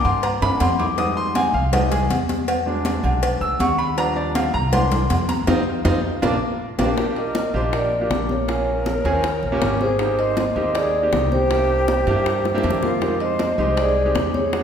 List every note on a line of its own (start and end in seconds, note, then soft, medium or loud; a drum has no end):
0.00 0.20 E3 medium
0.00 0.21 A#3 medium
0.00 0.21 D4 medium
0.05 0.39 G2 medium
0.05 0.23 C6 medium
0.05 low agogo medium
0.23 0.42 A#5 medium
0.23 cowbell medium
0.23 high conga soft
0.23 low agogo medium
0.42 0.59 G2 medium
0.42 0.59 E3 medium
0.42 0.59 A#3 soft
0.42 0.59 D4 medium
0.42 0.60 B5 loud
0.42 high conga soft
0.42 high timbale loud
0.60 1.48 F2 medium
0.60 0.79 C6 medium
0.60 cowbell medium
0.60 high conga medium
0.60 high timbale medium
0.60 low agogo loud
0.79 0.97 D6 medium
0.79 high conga soft
0.79 low timbale loud
0.79 low agogo medium
0.97 1.51 G3 medium
0.97 1.51 G#3 medium
0.97 1.52 D#4 medium
0.97 1.16 D#6 loud
0.97 cowbell medium
0.97 high conga soft
0.97 low agogo medium
1.17 1.35 C6 loud
1.17 high conga soft
1.35 1.54 G#5 medium
1.35 cowbell medium
1.35 high conga loud
1.35 low agogo loud
1.54 2.06 C2 medium
1.54 1.72 F5 medium
1.54 high conga soft
1.72 1.89 G3 medium
1.72 1.90 G#3 soft
1.72 1.90 D#4 medium
1.72 1.91 D#5 medium
1.72 cowbell loud
1.72 high conga soft
1.72 low conga medium
1.72 low agogo loud
1.91 2.03 G#4 medium
1.91 cowbell medium
1.91 high conga soft
1.91 low conga medium
2.10 2.98 E2 medium
2.10 cowbell medium
2.10 high conga medium
2.10 low agogo medium
2.29 cowbell medium
2.29 high conga medium
2.48 cowbell medium
2.48 high conga soft
2.48 low agogo loud
2.66 3.93 F#3 medium
2.66 3.93 G#3 medium
2.66 3.94 D4 medium
2.66 high conga soft
2.85 cowbell medium
2.85 high conga medium
2.85 low agogo medium
3.03 3.38 B1 loud
3.03 low agogo loud
3.23 cowbell loud
3.23 high conga soft
3.23 low agogo medium
3.41 3.58 C#2 medium
3.41 3.59 E6 loud
3.41 high conga soft
3.60 4.48 D#2 medium
3.60 3.78 C#6 loud
3.60 cowbell medium
3.60 high conga medium
3.60 low agogo loud
3.78 3.97 B5 medium
3.78 high conga soft
3.78 low agogo medium
3.97 4.51 F3 medium
3.97 4.51 G3 medium
3.97 4.51 D4 medium
3.97 4.16 A#5 loud
3.97 cowbell medium
3.97 high conga soft
3.97 low agogo medium
4.16 4.34 D5 medium
4.16 high conga soft
4.35 4.53 F5 medium
4.35 cowbell medium
4.35 high conga loud
4.35 low agogo loud
4.54 5.06 C2 medium
4.54 4.72 A#5 loud
4.54 high conga soft
4.72 4.97 E3 soft
4.72 4.98 A#3 soft
4.72 4.98 D4 medium
4.72 5.25 C6 loud
4.72 cowbell loud
4.72 high conga soft
4.72 low conga medium
4.72 low agogo loud
4.92 cowbell medium
4.92 high conga soft
4.92 low conga medium
5.10 5.45 F2 medium
5.10 cowbell medium
5.10 high conga medium
5.10 low timbale medium
5.10 low agogo medium
5.29 5.47 A#5 medium
5.29 cowbell medium
5.29 high conga medium
5.47 5.61 F2 loud
5.47 5.60 C4 loud
5.47 5.60 D#4 loud
5.47 5.59 F4 loud
5.47 cowbell loud
5.47 high conga loud
5.47 high timbale loud
5.85 5.99 F2 loud
5.85 5.97 C4 medium
5.85 5.97 D#4 medium
5.85 5.97 F4 loud
5.85 cowbell medium
5.85 high conga medium
5.85 high timbale loud
6.22 6.36 A#1 loud
6.22 6.34 A#3 loud
6.22 6.34 D4 loud
6.22 6.34 F4 loud
6.22 cowbell loud
6.22 high conga loud
6.22 high timbale loud
6.79 6.93 A#1 medium
6.79 6.91 A#3 medium
6.79 6.91 D4 medium
6.79 6.91 F4 medium
6.79 7.15 G4 medium
6.79 7.15 A#4 medium
6.79 cowbell loud
6.79 high conga loud
6.79 high timbale loud
6.97 7.37 A#3 medium
6.97 7.37 D4 medium
6.97 7.37 F4 medium
6.97 7.37 G4 medium
6.97 high bongo medium
6.97 high conga soft
6.97 high timbale medium
7.16 7.53 A#4 medium
7.16 7.53 D#5 medium
7.16 high conga soft
7.16 high timbale medium
7.35 high bongo medium
7.35 high conga medium
7.35 high timbale medium
7.35 low timbale medium
7.54 8.07 A#1 medium
7.54 7.87 A#3 medium
7.54 7.87 D4 medium
7.54 7.87 F4 medium
7.54 7.87 G4 medium
7.54 7.61 C5 medium
7.54 7.64 D#5 medium
7.54 high conga soft
7.73 8.09 A#4 medium
7.73 8.09 D5 medium
7.73 high bongo medium
7.73 high conga soft
7.73 high timbale medium
7.92 high conga soft
8.01 8.34 A#3 medium
8.01 8.34 D4 medium
8.01 8.34 F4 medium
8.01 8.34 G4 medium
8.10 8.99 A#1 medium
8.10 high bongo medium
8.10 low bongo medium
8.10 high conga medium
8.10 high timbale medium
8.10 low timbale medium
8.29 9.77 A#4 medium
8.29 9.77 C#5 medium
8.29 high conga medium
8.48 8.88 A#3 medium
8.48 8.88 C#4 medium
8.48 8.88 F4 medium
8.48 8.88 G#4 medium
8.48 high bongo medium
8.48 high conga soft
8.48 high timbale medium
8.67 high conga soft
8.86 high bongo soft
8.86 high conga medium
8.86 high timbale medium
8.86 low timbale medium
9.05 9.40 D#2 medium
9.05 9.24 C4 medium
9.05 9.24 C#4 medium
9.05 9.24 F4 medium
9.05 9.24 G#4 medium
9.05 high bongo soft
9.05 high conga soft
9.05 high timbale medium
9.24 high bongo medium
9.24 high conga soft
9.24 high timbale medium
9.43 9.60 A#1 medium
9.43 high bongo soft
9.43 high conga soft
9.52 9.85 A#3 medium
9.52 9.85 C#4 medium
9.52 9.85 F4 medium
9.52 9.86 G4 medium
9.62 10.50 G#1 medium
9.62 high bongo medium
9.62 low bongo medium
9.62 high conga medium
9.62 high timbale medium
9.62 low timbale medium
9.81 10.16 G#4 medium
9.81 10.20 C5 medium
9.81 high bongo soft
9.81 high conga medium
9.99 10.39 A#3 medium
9.99 10.39 C4 medium
9.99 10.39 D#4 medium
9.99 10.39 G4 medium
9.99 high bongo medium
9.99 high conga soft
9.99 high timbale medium
10.18 10.37 C5 medium
10.18 10.36 D#5 medium
10.18 high conga soft
10.18 high timbale medium
10.37 10.45 C5 medium
10.37 10.46 D#5 medium
10.37 high bongo medium
10.37 high conga medium
10.37 high timbale medium
10.37 low timbale medium
10.55 11.09 D#2 medium
10.55 10.89 A#3 medium
10.55 10.89 C4 medium
10.55 10.89 D#4 medium
10.55 10.89 G4 medium
10.55 10.74 C5 medium
10.55 10.76 D#5 medium
10.55 high conga soft
10.75 11.11 G#4 medium
10.75 11.10 D5 medium
10.75 high bongo medium
10.75 high conga soft
10.75 high timbale medium
10.93 high conga soft
11.02 11.36 A#3 medium
11.02 11.36 C4 medium
11.02 11.36 D#4 medium
11.02 11.36 G4 medium
11.13 12.01 C2 medium
11.13 high bongo medium
11.13 low bongo medium
11.13 high conga medium
11.13 high timbale medium
11.13 low timbale medium
11.32 12.79 G4 medium
11.32 12.88 C5 medium
11.32 high conga medium
11.50 11.90 A#3 medium
11.50 11.90 D4 medium
11.50 11.90 E4 medium
11.50 11.91 G4 medium
11.50 high bongo medium
11.50 high conga soft
11.50 high timbale medium
11.69 high conga soft
11.88 high bongo medium
11.88 high conga medium
11.88 high timbale medium
11.88 low timbale medium
12.07 12.60 G2 medium
12.07 12.40 A#3 medium
12.07 12.40 D4 medium
12.07 12.40 E4 medium
12.07 12.41 G4 loud
12.07 high bongo soft
12.07 high conga soft
12.07 high timbale medium
12.26 high bongo medium
12.26 high conga soft
12.26 high timbale medium
12.45 high bongo medium
12.45 high conga soft
12.54 12.87 A#3 medium
12.54 12.88 D4 medium
12.54 12.88 E4 medium
12.54 12.88 G4 loud
12.54 high bongo medium
12.64 13.52 F2 medium
12.64 high conga medium
12.64 high timbale medium
12.64 low timbale medium
12.70 low bongo medium
12.82 13.18 F4 medium
12.82 13.22 A#4 medium
12.82 low bongo medium
12.82 high conga medium
13.01 13.41 G#3 medium
13.01 13.41 C4 medium
13.01 13.41 D#4 medium
13.01 13.42 G4 medium
13.01 high bongo medium
13.01 high conga soft
13.01 high timbale medium
13.20 13.56 C5 medium
13.20 13.56 D#5 medium
13.20 high conga soft
13.20 high timbale medium
13.39 high bongo soft
13.39 high conga medium
13.39 high timbale medium
13.39 low timbale medium
13.58 14.11 C2 medium
13.58 13.91 G#3 medium
13.58 13.91 C4 medium
13.58 13.92 D#4 medium
13.58 13.92 G4 medium
13.58 13.64 C5 medium
13.58 13.64 D#5 medium
13.58 high conga soft
13.71 13.77 G#4 medium
13.71 13.78 C5 medium
13.77 14.13 G#4 medium
13.77 14.13 D5 medium
13.77 high bongo medium
13.77 high conga soft
13.77 high timbale medium
13.96 high conga soft
14.05 14.38 G#3 medium
14.05 14.39 C4 medium
14.05 14.39 D#4 medium
14.05 14.39 G4 medium
14.15 14.63 E2 medium
14.15 high bongo medium
14.15 low bongo medium
14.15 high conga medium
14.15 high timbale medium
14.15 low timbale medium
14.34 14.63 G#4 medium
14.34 14.63 C#5 medium
14.34 high conga medium
14.52 14.63 G#3 medium
14.52 14.63 B3 medium
14.52 14.63 D4 medium
14.52 14.63 F#4 medium
14.52 high bongo medium
14.52 high conga soft
14.52 high timbale medium